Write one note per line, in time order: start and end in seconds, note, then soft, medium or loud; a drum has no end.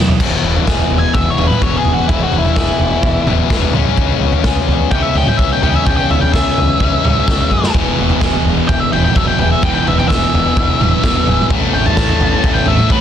0.00 0.13 E2 medium
0.00 0.18 B2 medium
0.00 0.20 D#3 medium
0.00 0.18 F#3 medium
0.00 0.21 F#3 medium
0.00 0.20 C#4 medium
0.08 floor tom medium
0.20 0.34 E1 medium
0.20 1.37 E2 medium
0.20 1.37 B2 medium
0.20 1.41 E3 medium
0.20 1.37 E3 medium
0.20 kick loud
0.20 floor tom medium
0.20 crash loud
0.43 0.57 E1 medium
0.43 0.90 B3 medium
0.56 floor tom medium
0.67 0.82 E1 medium
0.67 1.85 G#4 medium
0.67 kick loud
0.67 snare medium
0.79 floor tom medium
0.90 1.05 E1 medium
0.90 1.62 B3 medium
0.90 floor tom medium
0.99 1.14 G#5 medium
1.13 1.29 E1 medium
1.13 3.04 E4 medium
1.13 1.30 E5 medium
1.13 kick loud
1.13 floor tom medium
1.30 1.46 C#5 medium
1.37 1.52 E1 medium
1.37 1.60 E2 medium
1.37 1.61 B2 medium
1.37 1.63 E3 medium
1.37 2.56 F#3 medium
1.37 floor tom medium
1.47 1.62 B4 medium
1.47 mid tom medium
1.61 1.76 E1 medium
1.61 2.07 E2 medium
1.61 2.08 B2 medium
1.61 2.10 E3 medium
1.61 2.33 B3 medium
1.61 1.78 C#5 medium
1.61 kick loud
1.77 1.92 G#4 medium
1.85 2.00 E1 medium
1.85 2.57 G#4 medium
1.85 floor tom medium
1.93 2.07 F#4 medium
2.08 2.23 E1 loud
2.08 3.25 E2 medium
2.08 3.26 B2 medium
2.08 3.30 E3 medium
2.08 3.27 E3 medium
2.08 2.23 E4 medium
2.08 kick loud
2.08 floor tom medium
2.24 2.38 F#4 medium
2.32 2.48 E1 medium
2.32 2.80 B3 medium
2.32 floor tom medium
2.38 3.31 E4 medium
2.45 floor tom medium
2.56 2.71 E1 medium
2.56 4.46 G#4 medium
2.56 kick loud
2.56 snare medium
2.79 2.94 E1 medium
2.79 3.50 B3 medium
2.79 floor tom medium
3.03 3.17 E1 medium
3.03 4.92 E4 medium
3.03 kick loud
3.03 floor tom medium
3.26 3.40 E1 medium
3.26 3.50 E2 medium
3.26 3.50 B2 medium
3.26 3.53 E3 medium
3.26 3.74 F#3 medium
3.26 floor tom medium
3.26 mid tom medium
3.50 3.65 E1 medium
3.50 3.73 E2 medium
3.50 3.74 B2 medium
3.50 3.75 E3 medium
3.50 3.79 B3 medium
3.50 kick loud
3.50 snare medium
3.62 floor tom medium
3.73 3.88 C#2 medium
3.73 4.92 C#3 medium
3.73 3.99 C#3 medium
3.73 4.94 G#3 medium
3.73 4.94 C#4 medium
3.73 floor tom medium
3.73 mid tom medium
3.85 mid tom medium
3.97 4.12 C#2 medium
3.97 5.16 C#3 medium
3.97 kick loud
3.97 floor tom medium
4.20 4.34 C#2 medium
4.20 4.69 B3 medium
4.32 floor tom medium
4.44 4.59 C#2 medium
4.44 5.64 G#4 medium
4.44 kick loud
4.44 snare medium
4.56 floor tom medium
4.68 4.82 C#2 medium
4.68 5.39 B3 medium
4.68 floor tom medium
4.91 5.06 C#2 medium
4.91 5.14 C#3 medium
4.91 5.17 G#3 medium
4.91 5.15 C#4 medium
4.91 6.81 E4 medium
4.91 5.02 G5 loud
4.91 kick loud
4.91 floor tom medium
5.02 5.17 E5 loud
5.14 5.29 C#2 medium
5.14 7.05 G#3 medium
5.14 5.63 G#3 medium
5.14 5.61 C#4 medium
5.14 5.27 G5 medium
5.14 floor tom medium
5.18 5.60 C#3 medium
5.27 5.37 G5 medium
5.27 mid tom medium
5.37 5.53 C#2 medium
5.37 6.11 B3 medium
5.37 5.49 E5 medium
5.37 kick loud
5.53 5.62 G5 loud
5.62 5.77 C#2 medium
5.62 6.78 C#3 medium
5.62 6.82 G#3 medium
5.62 6.79 C#4 loud
5.62 6.35 G#4 medium
5.62 5.74 G5 medium
5.62 floor tom medium
5.75 5.86 E5 medium
5.86 6.01 C#2 medium
5.86 7.04 C#3 medium
5.86 5.96 G5 medium
5.86 kick loud
5.86 floor tom medium
5.97 6.10 G5 medium
6.10 6.24 C#2 medium
6.10 6.57 B3 medium
6.10 6.21 E5 medium
6.10 floor tom medium
6.21 6.33 G5 medium
6.21 floor tom medium
6.34 6.48 C#2 medium
6.34 7.51 G#4 medium
6.34 7.70 E5 loud
6.34 kick loud
6.34 snare medium
6.58 6.72 C#2 medium
6.58 7.28 B3 medium
6.58 floor tom medium
6.80 6.95 C#2 medium
6.80 7.02 C#3 medium
6.80 7.05 G#3 medium
6.80 7.03 C#4 medium
6.80 8.69 E4 medium
6.80 kick medium
6.80 floor tom medium
7.04 7.19 C#2 medium
7.04 7.51 C#3 medium
7.04 7.77 G#3 medium
7.04 8.93 G#3 medium
7.04 7.49 C#4 medium
7.04 floor tom medium
7.04 mid tom medium
7.28 7.42 C#2 medium
7.28 7.98 B3 medium
7.28 kick loud
7.28 snare medium
7.40 floor tom medium
7.51 7.65 F#2 medium
7.51 8.21 G#4 medium
7.51 kick medium
7.64 snare medium
7.74 7.89 E1 medium
7.74 8.90 E2 medium
7.74 8.91 B2 medium
7.74 8.96 E3 medium
7.74 8.92 E3 medium
7.74 kick loud
7.74 floor tom medium
7.98 8.12 E1 medium
7.98 8.44 B3 medium
8.10 floor tom medium
8.21 8.35 E1 medium
8.21 9.39 G#4 medium
8.21 kick loud
8.21 snare medium
8.33 floor tom medium
8.45 8.60 E1 medium
8.45 9.15 B3 medium
8.45 floor tom medium
8.68 8.83 E1 medium
8.68 10.56 E4 medium
8.68 8.80 G5 loud
8.68 kick loud
8.68 floor tom medium
8.80 8.91 E5 loud
8.92 9.07 E1 medium
8.92 9.15 E2 medium
8.92 9.15 B2 medium
8.92 9.18 E3 medium
8.92 10.10 F#3 medium
8.92 9.03 G5 medium
8.92 floor tom medium
9.04 9.16 G5 medium
9.04 mid tom medium
9.16 9.30 E1 medium
9.16 9.61 E2 medium
9.16 9.62 B2 medium
9.16 9.65 E3 medium
9.16 9.86 B3 medium
9.16 9.27 E5 medium
9.16 kick loud
9.27 9.39 G5 loud
9.39 9.54 E1 medium
9.39 10.10 G#4 medium
9.39 9.51 G5 medium
9.39 floor tom medium
9.52 9.63 E5 medium
9.63 9.77 E1 medium
9.63 10.79 E2 medium
9.63 10.80 B2 medium
9.63 10.83 E3 medium
9.63 10.80 E3 medium
9.63 9.73 G5 medium
9.63 kick loud
9.63 floor tom medium
9.75 9.86 G5 loud
9.87 10.00 E1 medium
9.87 10.33 B3 medium
9.87 9.98 E5 medium
9.87 floor tom medium
9.98 10.08 G5 medium
9.98 floor tom medium
10.08 10.24 E1 medium
10.08 11.26 G#4 medium
10.08 11.46 E5 medium
10.08 kick loud
10.08 snare medium
10.33 10.47 E1 medium
10.33 11.01 B3 medium
10.33 floor tom medium
10.56 10.71 E1 medium
10.56 12.44 E4 medium
10.56 kick loud
10.56 floor tom medium
10.80 10.94 E1 medium
10.80 11.03 E2 medium
10.80 11.03 B2 medium
10.80 11.06 E3 medium
10.80 11.51 F#3 medium
10.80 floor tom medium
10.80 mid tom medium
11.03 11.18 E1 medium
11.03 11.49 E2 medium
11.03 11.50 B2 medium
11.03 11.51 E3 medium
11.03 11.50 B3 medium
11.03 kick loud
11.03 snare medium
11.16 floor tom medium
11.27 11.41 E1 medium
11.27 11.50 G#4 medium
11.27 floor tom medium
11.27 mid tom medium
11.38 mid tom medium
11.49 11.64 A1 loud
11.49 13.01 A2 medium
11.49 12.70 A2 medium
11.49 12.69 E3 medium
11.49 12.68 A3 loud
11.49 kick loud
11.49 floor tom medium
11.73 11.88 A1 medium
11.73 12.20 C#4 medium
11.73 11.86 G5 loud
11.86 12.54 A5 loud
11.86 floor tom medium
11.96 12.11 A1 medium
11.96 13.01 A4 medium
11.96 kick loud
11.96 snare medium
12.09 floor tom medium
12.20 12.35 A1 medium
12.20 12.90 C#4 medium
12.20 floor tom medium
12.43 12.58 A1 medium
12.43 13.01 E4 medium
12.43 kick loud
12.43 floor tom medium
12.54 12.66 G5 loud
12.66 12.81 A1 medium
12.66 12.91 E3 medium
12.66 13.01 A3 medium
12.66 12.92 A3 medium
12.66 12.91 E5 medium
12.66 floor tom medium
12.70 12.89 A2 medium
12.78 mid tom medium
12.90 13.01 A1 medium
12.90 13.01 A2 medium
12.90 13.01 E3 medium
12.90 13.01 A3 medium
12.90 13.01 C#4 medium
12.90 13.01 B4 medium
12.90 kick loud